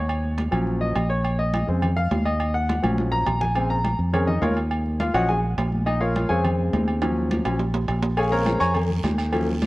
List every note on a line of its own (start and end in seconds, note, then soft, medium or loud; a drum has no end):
0.00 0.47 D#2 loud
0.00 0.35 C#5 medium
0.09 high conga soft
0.09 low agogo loud
0.24 high conga soft
0.38 high conga medium
0.38 low timbale medium
0.38 low agogo medium
0.51 0.93 A#1 loud
0.51 0.93 F3 medium
0.51 0.93 F#3 medium
0.51 0.94 C#4 medium
0.51 low agogo loud
0.67 high conga soft
0.81 1.08 D#5 medium
0.81 high conga soft
0.96 1.63 A#1 loud
0.96 high conga soft
0.96 low timbale medium
0.96 low agogo loud
1.10 1.37 C#5 medium
1.24 high conga soft
1.24 low agogo loud
1.39 1.66 D#5 medium
1.39 high conga soft
1.53 high conga medium
1.53 low timbale medium
1.53 low agogo loud
1.67 2.08 F2 loud
1.67 1.87 C#3 medium
1.67 1.87 G#3 medium
1.67 1.88 C4 medium
1.67 high conga soft
1.82 high conga soft
1.82 low conga medium
1.82 low agogo loud
1.97 2.24 F5 loud
1.97 high conga soft
2.11 2.78 D#2 loud
2.11 high conga medium
2.11 low timbale medium
2.11 low agogo medium
2.25 2.52 D#5 medium
2.25 high conga soft
2.25 low agogo medium
2.40 high conga soft
2.40 low agogo loud
2.54 2.81 F#5 medium
2.54 high conga soft
2.69 high conga medium
2.69 low timbale medium
2.69 low agogo medium
2.82 3.24 A#1 loud
2.82 3.24 F3 medium
2.82 3.24 F#3 medium
2.82 3.25 C#4 medium
2.82 high conga medium
2.82 low agogo loud
2.98 high conga medium
3.12 3.39 A#5 loud
3.26 3.94 A#1 medium
3.26 low conga medium
3.26 low timbale medium
3.26 low agogo loud
3.41 3.68 G#5 medium
3.41 low conga medium
3.55 3.75 C#3 medium
3.55 3.75 G#3 medium
3.55 3.75 C4 medium
3.55 high conga soft
3.55 low agogo loud
3.70 3.97 A#5 medium
3.70 high conga soft
3.84 high conga medium
3.84 low timbale medium
3.84 low agogo medium
3.99 4.39 F2 medium
3.99 high conga soft
4.13 4.26 C#3 soft
4.13 4.26 G#3 soft
4.13 4.27 C4 medium
4.13 4.28 C#4 medium
4.13 4.28 G#4 medium
4.13 4.28 A#4 medium
4.13 4.27 C#5 medium
4.13 high conga soft
4.13 low conga medium
4.13 low agogo loud
4.27 4.42 D#4 medium
4.27 4.42 D#5 medium
4.27 high conga soft
4.27 low conga medium
4.42 5.09 D#2 loud
4.42 4.56 F4 medium
4.42 4.56 A#4 medium
4.42 4.56 C#5 medium
4.42 4.56 F5 medium
4.42 high conga medium
4.42 low timbale medium
4.42 low agogo medium
4.57 high conga soft
4.57 low agogo medium
4.71 high conga soft
4.71 low agogo loud
4.86 high conga soft
5.00 5.14 F4 medium
5.00 5.14 F5 medium
5.00 high conga medium
5.00 low timbale medium
5.00 low agogo medium
5.14 5.55 A#1 loud
5.14 5.33 F3 medium
5.14 5.34 F#3 medium
5.14 5.34 C#4 medium
5.14 5.29 F#4 medium
5.14 5.29 C#5 medium
5.14 5.29 D#5 medium
5.14 5.29 F#5 loud
5.14 low agogo loud
5.29 5.38 G#4 medium
5.29 5.38 G#5 medium
5.29 high conga soft
5.44 high conga soft
5.58 6.25 A#1 loud
5.58 high conga soft
5.58 low timbale medium
5.58 low agogo loud
5.72 high conga medium
5.86 6.01 D#4 medium
5.86 6.00 D#5 medium
5.86 high conga soft
5.86 low agogo medium
6.01 6.28 F4 medium
6.01 6.28 A#4 medium
6.01 6.28 C#5 medium
6.01 6.28 F5 medium
6.01 high conga soft
6.16 high conga medium
6.16 low timbale medium
6.16 low agogo medium
6.29 6.70 F2 medium
6.29 6.98 C#3 medium
6.29 6.98 G#3 medium
6.29 6.99 C4 medium
6.29 6.44 G#4 medium
6.29 6.44 C#5 medium
6.29 6.44 F5 medium
6.29 6.44 G#5 loud
6.29 high conga soft
6.44 high conga soft
6.44 low conga medium
6.44 low agogo loud
6.59 high conga soft
6.73 7.40 D#2 loud
6.73 high conga medium
6.73 low timbale medium
6.73 low agogo medium
6.88 high conga soft
6.88 low agogo medium
7.02 7.43 F3 medium
7.02 7.44 F#3 medium
7.02 7.44 C#4 medium
7.02 high conga soft
7.02 high timbale medium
7.02 low agogo loud
7.17 high conga soft
7.31 high conga loud
7.31 low agogo medium
7.45 7.86 A#1 medium
7.45 7.58 F3 soft
7.45 7.58 F#3 soft
7.45 7.58 C#4 medium
7.45 low timbale medium
7.45 low agogo loud
7.59 high conga soft
7.59 low timbale medium
7.74 high conga soft
7.74 low timbale medium
7.88 8.55 A#1 medium
7.88 high conga soft
7.88 low timbale medium
7.88 low agogo loud
8.03 low timbale medium
8.17 8.32 G#4 medium
8.17 8.31 C#5 medium
8.17 8.31 F5 medium
8.17 8.31 G#5 medium
8.17 cowbell loud
8.17 high conga soft
8.17 low agogo loud
8.17 long guiro medium
8.31 8.73 C#3 medium
8.31 8.73 G#3 medium
8.31 8.73 C4 medium
8.31 8.59 A#4 medium
8.31 8.59 C#5 medium
8.31 8.59 F5 medium
8.31 8.59 A#5 medium
8.31 high conga soft
8.46 cowbell medium
8.46 high conga medium
8.46 low timbale medium
8.46 low agogo medium
8.46 short guiro medium
8.60 9.01 F2 loud
8.60 8.75 C#5 medium
8.60 8.75 G#5 medium
8.60 8.75 A#5 medium
8.60 8.74 C#6 loud
8.60 short guiro medium
8.74 cowbell loud
8.74 high conga soft
8.74 low conga medium
8.74 low agogo loud
8.74 long guiro medium
8.90 high conga soft
8.90 low conga medium
9.04 9.66 D#2 loud
9.04 cowbell medium
9.04 high conga medium
9.04 low timbale medium
9.04 low agogo medium
9.04 short guiro medium
9.18 cowbell medium
9.18 high conga soft
9.18 low agogo medium
9.18 short guiro medium
9.32 9.52 F3 medium
9.32 9.52 F#3 medium
9.32 9.52 C#4 medium
9.32 cowbell loud
9.32 high conga soft
9.32 low agogo loud
9.32 long guiro medium
9.48 high conga soft
9.62 cowbell medium
9.62 high conga medium
9.62 low timbale medium
9.62 low agogo medium
9.62 short guiro medium